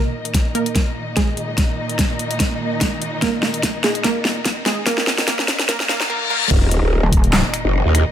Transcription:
Already playing: A#2 D#3 A#3 D#4 A#4 D#5, riser
0.25 closed hi-hat
0.34 kick, snare, closed hi-hat
0.55 A#3 A#4, closed hi-hat
0.66 closed hi-hat
0.76 kick, snare, closed hi-hat
1.17 G#3 G#4, kick, snare, closed hi-hat
1.37 closed hi-hat
1.58 kick, snare, closed hi-hat
1.89 closed hi-hat
1.99 kick, snare, closed hi-hat
2.19 closed hi-hat
2.31 closed hi-hat
2.40 kick, snare, closed hi-hat
2.81 kick, snare, closed hi-hat
3.02 closed hi-hat
3.22 A#3 A#4, kick, snare, closed hi-hat
3.43 snare
3.54 closed hi-hat
3.63 kick, snare, closed hi-hat
3.84 G#3 G#4, snare, closed hi-hat
3.95 closed hi-hat
4.04 A#3 A#4, kick, snare, closed hi-hat
4.25 snare
4.45 kick, snare, closed hi-hat
4.66 G#3 G#4, snare, closed hi-hat
4.87 A#3 A#4, kick, snare, closed hi-hat
4.98 snare
5.07 snare
5.18 snare, closed hi-hat
5.28 A#3 A#4, kick, snare, closed hi-hat
5.39 snare
5.48 snare, closed hi-hat
5.59 snare, closed hi-hat
5.69 A#3 A#4, kick, snare, closed hi-hat, reverse cymbal
5.80 snare
5.89 A#3 A#4, snare
6.01 snare
6.10 A#3 A#4
6.30 A#3 A#4
6.51 D#1 A#2 D#3 A#3 D#4 D#5, kick, crash, sub drop
6.71 closed hi-hat
6.83 D#1
7.03 D#1
7.13 kick, closed hi-hat
7.24 closed hi-hat
7.33 snare, clap
7.54 finger snap, closed hi-hat
7.65 F#1
7.85 D#2
7.95 finger snap, closed hi-hat

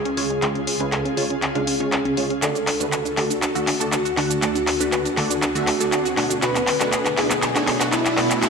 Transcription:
Already playing: C#2 C#3 F4 G#4
0.05 C#4, closed hi-hat
0.17 C#3 G#3 C#4 F4 C#5, open hi-hat
0.30 G#3, closed hi-hat
0.42 C#3 G#3 C#4 F4 G#4 C#5, clap, closed hi-hat
0.55 C#4, closed hi-hat
0.67 C#4, open hi-hat
0.80 C#3 G#3 C#4 F4 B4, closed hi-hat
0.92 A4, clap, closed hi-hat
1.05 C#4, closed hi-hat
1.17 C#3 G#3 C#4 F4 C#5, open hi-hat
1.30 C#4, closed hi-hat
1.42 C#4, clap, closed hi-hat
1.55 C#3 G#3 C#4 D4 F4 F5, closed hi-hat
1.67 C#4, open hi-hat
1.80 C#3 G#3 C#4 F4 C#5, closed hi-hat
1.92 C#4, clap, closed hi-hat
2.05 C#4, closed hi-hat
2.17 G#3 C#4 F4 C#5, open hi-hat
2.30 C#4, closed hi-hat
2.42 D2 D3 A3 D4 F#4 A4 D5, clap, closed hi-hat, riser, cabasa
2.55 D4, closed hi-hat, cabasa
2.67 D4, clap, open hi-hat
2.80 D3 A3 D4 F#4 B4, closed hi-hat, cabasa
2.92 B4, clap, closed hi-hat, cabasa
3.05 D4, closed hi-hat, cabasa
3.17 D3 A3 D4 F#4 A4 D5, clap, open hi-hat
3.30 D4, closed hi-hat, cabasa
3.42 D4, clap, closed hi-hat, cabasa
3.55 D3 A3 D4 F#4 E5, closed hi-hat, cabasa
3.67 D4, clap, open hi-hat
3.80 D3 A3 D4 F#4 A4 D5, closed hi-hat, cabasa
3.92 D4 F#4, clap, closed hi-hat, cabasa
4.05 F#4, closed hi-hat, cabasa
4.17 D3 A3 D4 F#4 F#5, clap, open hi-hat
4.30 D4, closed hi-hat, cabasa
4.42 D3 A3 D4 F#4 G#4 A4 D5, clap, closed hi-hat, cabasa
4.55 D4, closed hi-hat, cabasa
4.67 D4, clap, open hi-hat
4.80 D3 A3 D4 F#4 B4, closed hi-hat, cabasa
4.92 B4, clap, closed hi-hat, cabasa
5.05 D4, closed hi-hat, cabasa
5.17 D3 A3 D4 F#4 A4 D5, clap, open hi-hat
5.30 D4, closed hi-hat, cabasa
5.42 D4, clap, closed hi-hat, cabasa
5.55 D3 A3 D4 F#4 E5, closed hi-hat, cabasa
5.67 D4, clap, open hi-hat
5.80 D3 A3 D4 F#4 A4 D5, closed hi-hat, cabasa
5.92 D4, clap, closed hi-hat, cabasa
6.05 F#4, closed hi-hat, cabasa
6.17 B2 A3 D4 F#4 F#5, clap, open hi-hat
6.30 D4, closed hi-hat, cabasa
6.42 B2 F#3 A3 D4 F#4 B4, clap, closed hi-hat, cabasa
6.55 B3, clap, closed hi-hat, cabasa
6.67 B3, clap, open hi-hat
6.80 B2 A3 B3 D4 F#4 A4, clap, closed hi-hat, cabasa
6.92 G#4, clap, closed hi-hat, cabasa
7.05 B3, clap, closed hi-hat, cabasa
7.17 B2 A3 D4 E4 F#4 G#4 B4, clap, open hi-hat
7.30 B3, clap, closed hi-hat, cabasa
7.42 B3, clap, closed hi-hat, cabasa
7.55 B2 A3 D4 F#4 C#5, clap, closed hi-hat, cabasa
7.67 B3, clap, open hi-hat
7.80 B2 A3 D4 F#4 B4, clap, closed hi-hat, cabasa
7.92 B3 E4, clap, closed hi-hat, cabasa
8.05 D4, clap, closed hi-hat, cabasa
8.17 B2 A3 B3 D4 F#4 D5, clap, open hi-hat
8.31 B3, clap, closed hi-hat, cabasa
8.42 B2 A3 D4 F#4 B4, clap, closed hi-hat, cabasa

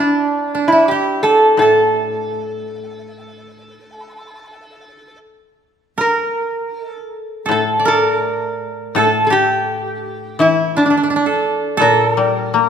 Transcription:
Already playing: D4 E4
0.00 D4
0.55 D4
0.68 E4
0.72 E4
0.88 G4
1.23 A4
1.57 A2 A4
1.62 A4
5.98 A#4
6.85 A4
7.46 A2 A4
7.51 A4
7.79 D5
7.85 A4 A#4
8.13 A#4
8.95 A2 A4
9.27 G4 A4
9.32 G4
10.39 E3 E4
10.77 D4
10.86 D4
10.90 D4
10.97 D4
11.03 D4
11.10 D4
11.16 D4
11.26 A4
11.77 A#2 A4
11.82 A#4
12.11 A#4
12.17 G3
12.54 A#3

